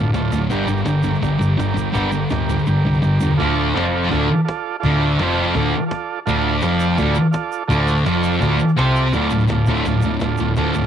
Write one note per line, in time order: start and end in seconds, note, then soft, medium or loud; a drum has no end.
0.00 0.10 G1 medium
0.00 0.11 D2 medium
0.00 0.12 A2 medium
0.00 0.10 F4 medium
0.00 0.11 A4 medium
0.00 0.11 D5 medium
0.12 0.27 D1 medium
0.12 0.30 D2 medium
0.12 0.30 A2 loud
0.12 0.45 F4 medium
0.12 0.45 A4 medium
0.12 0.45 D5 loud
0.12 cajon slap loud
0.12 shaker medium
0.32 0.46 D1 medium
0.32 0.48 D2 medium
0.32 0.49 A2 medium
0.32 cajon bass medium
0.32 shaker loud
0.49 0.64 G1 medium
0.49 0.67 G2 medium
0.49 0.67 D3 medium
0.49 0.67 G3 loud
0.49 0.81 G4 medium
0.49 0.81 A#4 medium
0.49 0.82 D5 loud
0.49 cajon bass loud
0.49 shaker medium
0.66 0.81 G1 medium
0.66 0.84 G2 medium
0.66 0.84 D3 medium
0.66 shaker loud
0.77 shaker soft
0.85 1.14 G1 loud
0.85 1.02 G2 medium
0.85 1.02 D3 medium
0.85 1.18 G4 medium
0.85 1.18 A#4 medium
0.85 cajon slap loud
0.85 shaker medium
0.89 1.18 D5 loud
1.03 1.20 G2 medium
1.03 1.20 D3 medium
1.03 cajon bass medium
1.03 shaker medium
1.15 shaker soft
1.21 1.37 G1 medium
1.21 1.37 G2 medium
1.21 1.38 D3 medium
1.21 1.54 G4 medium
1.21 1.53 A#4 medium
1.21 1.54 D5 medium
1.21 cajon bass loud
1.21 shaker medium
1.39 1.55 G1 medium
1.39 1.56 G2 medium
1.39 1.56 D3 medium
1.39 cajon bass medium
1.39 shaker loud
1.58 1.87 G1 medium
1.58 1.73 G2 medium
1.58 1.73 D3 medium
1.58 1.89 G4 medium
1.58 1.89 A#4 medium
1.58 1.89 D5 loud
1.58 cajon slap loud
1.58 shaker medium
1.74 1.91 G2 medium
1.74 1.92 D3 medium
1.74 cajon bass medium
1.74 shaker medium
1.92 2.23 G1 medium
1.92 2.10 G2 medium
1.92 2.10 D3 medium
1.92 2.11 G3 loud
1.92 2.24 G4 medium
1.92 2.24 A#4 medium
1.92 2.25 D5 medium
1.92 cajon bass loud
1.92 shaker medium
2.11 2.28 G2 medium
2.11 2.28 D3 medium
2.11 shaker medium
2.30 2.59 D1 medium
2.30 2.47 G2 medium
2.30 2.47 D3 medium
2.30 2.61 G4 medium
2.30 2.62 A#4 medium
2.30 2.62 D5 medium
2.30 cajon slap loud
2.30 shaker medium
2.49 2.65 G2 medium
2.49 2.66 D3 medium
2.49 cajon bass medium
2.49 shaker medium
2.59 shaker soft
2.67 2.81 G1 medium
2.67 2.83 G2 medium
2.67 2.83 D3 medium
2.67 2.98 G4 medium
2.67 2.99 A#4 medium
2.67 2.99 D5 medium
2.67 shaker medium
2.85 2.99 C2 medium
2.85 3.01 G2 medium
2.85 3.01 D3 medium
2.94 shaker soft
3.02 3.18 G1 medium
3.02 3.19 G2 medium
3.02 3.19 D3 medium
3.02 3.33 G4 medium
3.02 3.34 A#4 medium
3.02 3.34 D5 medium
3.02 shaker medium
3.20 3.35 E1 medium
3.20 3.37 G2 medium
3.20 3.38 D3 medium
3.20 shaker medium
3.37 3.73 D1 loud
3.37 3.74 D2 loud
3.37 3.75 D3 loud
3.37 3.69 F4 loud
3.37 3.69 A4 loud
3.37 3.69 D5 loud
3.37 cajon bass loud
3.73 4.08 F1 medium
3.73 4.10 F2 medium
3.73 4.11 F3 loud
3.73 4.04 F4 medium
3.73 4.05 A4 medium
3.73 4.05 D5 loud
3.77 cajon slap loud
4.09 4.28 D1 loud
4.09 4.28 D2 loud
4.09 4.29 D3 loud
4.09 4.41 F4 medium
4.09 4.42 A4 medium
4.09 4.41 D5 medium
4.09 cajon bass loud
4.44 4.77 F4 medium
4.44 4.76 A4 medium
4.44 4.77 D5 medium
4.49 cajon slap loud
4.80 5.17 D1 loud
4.80 5.12 F4 loud
4.80 5.12 A4 loud
4.80 5.13 D5 loud
4.80 cajon bass loud
4.85 5.20 D2 loud
4.85 5.22 D3 loud
5.17 5.52 F1 loud
5.17 5.55 F2 medium
5.17 5.48 F4 medium
5.17 5.49 A4 medium
5.17 5.49 D5 loud
5.17 cajon slap loud
5.22 5.56 F3 loud
5.47 cajon slap soft
5.52 5.71 D1 loud
5.52 5.72 D2 loud
5.52 5.73 D3 loud
5.52 5.84 F4 medium
5.52 5.84 A4 medium
5.52 5.84 D5 loud
5.52 cajon bass loud
5.86 6.19 F4 medium
5.86 6.20 A4 medium
5.86 6.20 D5 medium
5.91 cajon slap loud
6.26 6.60 D1 loud
6.26 6.62 D2 loud
6.26 6.63 D3 loud
6.26 6.57 F4 loud
6.26 6.57 A4 loud
6.26 6.57 D5 loud
6.26 cajon bass loud
6.26 shaker medium
6.61 6.96 F1 loud
6.61 6.98 F2 loud
6.61 6.98 F3 loud
6.61 6.93 F4 medium
6.61 6.93 A4 medium
6.61 6.94 D5 loud
6.61 cajon slap loud
6.61 shaker medium
6.80 shaker medium
6.90 cajon slap soft
6.95 7.15 D1 medium
6.95 7.16 D2 loud
6.95 7.27 F4 medium
6.95 7.27 A4 medium
6.95 7.28 D5 medium
6.95 cajon bass loud
6.95 shaker medium
6.99 7.16 D3 loud
7.15 shaker loud
7.31 7.63 F4 medium
7.31 7.64 A4 medium
7.31 7.64 D5 loud
7.31 cajon slap loud
7.31 shaker medium
7.52 shaker loud
7.68 8.03 D1 loud
7.68 8.05 D2 medium
7.68 8.06 D3 loud
7.68 7.99 F4 loud
7.68 7.99 A4 loud
7.68 7.99 D5 loud
7.68 cajon bass loud
7.68 shaker medium
7.88 shaker loud
7.97 shaker soft
8.06 8.39 F1 loud
8.06 8.40 F2 medium
8.06 8.41 F3 loud
8.06 8.36 F4 medium
8.06 8.37 A4 medium
8.06 8.37 D5 loud
8.06 cajon slap loud
8.06 shaker medium
8.23 shaker medium
8.33 cajon slap soft
8.33 shaker soft
8.40 8.58 D1 loud
8.40 8.59 D2 loud
8.40 8.59 D3 loud
8.40 8.71 F4 medium
8.40 8.71 A4 medium
8.40 8.72 D5 medium
8.40 cajon bass loud
8.40 shaker medium
8.59 shaker medium
8.69 shaker soft
8.77 9.11 C2 medium
8.77 9.12 C3 loud
8.77 9.13 C4 loud
8.77 9.07 F4 medium
8.77 9.08 A4 medium
8.77 9.08 D5 medium
8.77 cajon slap loud
8.77 shaker medium
8.96 shaker medium
9.13 9.27 D1 medium
9.13 9.30 D2 medium
9.13 9.30 A2 medium
9.13 9.31 D3 loud
9.13 9.44 F4 medium
9.13 9.45 A4 medium
9.13 9.44 D5 loud
9.13 cajon bass loud
9.13 shaker medium
9.30 9.45 D1 medium
9.30 9.48 D2 medium
9.30 9.49 A2 medium
9.30 shaker loud
9.40 shaker soft
9.48 9.63 D1 medium
9.48 9.65 D2 medium
9.48 9.66 A2 medium
9.48 9.81 F4 medium
9.48 9.80 A4 medium
9.48 cajon slap loud
9.48 shaker medium
9.52 9.81 D5 medium
9.66 9.81 D1 medium
9.66 9.84 D2 loud
9.66 9.85 A2 loud
9.66 9.85 D3 loud
9.66 cajon bass loud
9.66 shaker medium
9.76 shaker soft
9.85 9.99 D1 loud
9.85 10.02 D2 medium
9.85 10.01 A2 medium
9.85 10.16 F4 medium
9.85 10.16 A4 medium
9.85 10.17 D5 medium
9.85 cajon bass loud
9.85 shaker medium
10.02 10.17 D1 medium
10.02 10.20 D2 medium
10.02 10.20 A2 medium
10.02 shaker medium
10.20 10.35 D1 medium
10.20 10.37 D2 medium
10.20 10.37 A2 medium
10.20 10.52 F4 medium
10.20 cajon slap loud
10.20 shaker medium
10.24 10.53 A4 medium
10.24 10.53 D5 loud
10.37 10.52 D1 medium
10.37 10.55 D2 medium
10.37 10.55 A2 medium
10.37 cajon bass medium
10.37 shaker medium
10.56 10.70 D1 loud
10.56 10.73 D2 medium
10.56 10.74 A2 loud
10.56 10.74 D3 loud
10.56 10.87 F4 medium
10.56 10.87 A4 medium
10.56 10.87 D5 loud
10.56 cajon bass loud
10.56 shaker medium
10.74 10.87 D1 medium
10.74 10.87 D2 medium
10.74 10.87 A2 medium
10.74 shaker medium
10.82 shaker soft